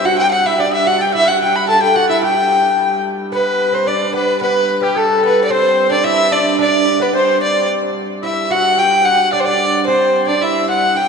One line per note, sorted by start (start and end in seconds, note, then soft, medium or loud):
0.00 3.33 G2 medium
0.05 0.19 F#4 medium
0.05 0.18 F#5 medium
0.05 0.22 F#5 medium
0.18 0.46 G4 medium
0.18 0.30 G5 medium
0.18 0.32 G5 medium
0.31 0.48 F#5 medium
0.31 0.38 F#5 medium
0.37 0.46 F#5 medium
0.37 0.42 G5 medium
0.45 0.58 E4 medium
0.45 0.61 E5 medium
0.45 0.62 E5 medium
0.58 0.86 D4 medium
0.58 0.73 D5 medium
0.58 0.76 D5 medium
0.73 0.89 E5 medium
0.73 0.88 E5 medium
0.87 1.01 F#4 medium
0.87 1.03 F#5 medium
0.98 1.15 G4 medium
0.98 1.15 G5 medium
0.98 1.14 G5 medium
0.98 1.01 A5 medium
1.13 1.27 E4 medium
1.13 1.29 E5 medium
1.13 1.29 E5 loud
1.27 1.42 F#4 medium
1.27 1.68 F#5 medium
1.27 1.42 F#5 medium
1.42 1.68 G4 medium
1.42 1.57 G5 medium
1.56 1.68 B5 medium
1.68 1.82 A4 medium
1.68 1.83 A5 medium
1.68 1.82 A5 medium
1.81 1.97 G4 medium
1.81 1.96 G5 medium
1.81 1.97 G5 medium
1.95 2.09 F#4 medium
1.95 2.08 F#5 medium
1.95 2.09 F#5 medium
2.09 2.22 E4 medium
2.09 2.24 E5 medium
2.09 2.22 E5 medium
2.23 3.01 G4 medium
2.23 3.05 G5 medium
2.23 3.01 G5 medium
3.32 7.68 G2 medium
3.32 3.72 B3 medium
3.32 3.76 B4 medium
3.32 3.84 B4 medium
3.73 3.87 C4 medium
3.73 3.89 C5 medium
3.86 4.15 D4 medium
3.86 4.00 D5 medium
3.86 4.14 D5 medium
4.13 4.40 B3 medium
4.13 4.40 B4 medium
4.41 4.84 B3 medium
4.41 4.80 B4 medium
4.41 4.85 B4 medium
4.81 4.95 G3 medium
4.81 4.99 G4 medium
4.81 4.98 G4 medium
4.96 5.21 A3 medium
4.96 5.51 A4 medium
4.96 5.24 A4 medium
5.23 5.49 B3 medium
5.23 5.43 B4 medium
5.44 5.52 D5 medium
5.50 5.88 C4 medium
5.50 5.91 C5 medium
5.50 5.95 C5 medium
5.90 6.04 D4 medium
5.90 6.06 D5 medium
5.90 6.08 D5 medium
6.04 6.31 E4 medium
6.04 6.34 E5 loud
6.04 6.32 E5 medium
6.31 6.57 D4 medium
6.31 6.45 D5 medium
6.31 6.60 D5 medium
6.59 7.01 D4 medium
6.59 6.98 D5 medium
6.59 7.04 D5 medium
7.00 7.12 B3 medium
7.00 7.07 B4 medium
7.00 7.15 B4 medium
7.13 7.64 C4 medium
7.13 7.40 C5 medium
7.41 7.67 D5 medium
7.41 7.68 D5 medium
7.68 11.08 G2 medium
8.22 8.48 E4 medium
8.22 8.48 E5 medium
8.22 8.53 E5 medium
8.51 8.79 F#4 medium
8.51 8.81 F#5 medium
8.51 8.80 F#5 loud
8.78 9.06 G4 medium
8.78 9.07 G5 medium
8.78 9.06 G5 medium
9.05 9.33 F#4 medium
9.05 9.34 F#5 medium
9.05 9.32 F#5 medium
9.33 9.45 D4 medium
9.33 9.41 D5 medium
9.33 9.46 D5 medium
9.40 9.47 C5 medium
9.45 9.84 D4 medium
9.45 9.86 D5 loud
9.45 9.84 D5 medium
9.87 10.29 C4 medium
9.87 10.24 C5 medium
9.87 10.29 C5 medium
10.28 10.41 D4 medium
10.28 10.41 D5 medium
10.28 10.43 D5 medium
10.41 10.97 E4 medium
10.41 10.66 E5 medium
10.41 10.68 E5 medium
10.69 10.94 F#5 medium
10.69 10.98 F#5 medium
10.95 11.08 G4 medium
10.95 11.08 G5 medium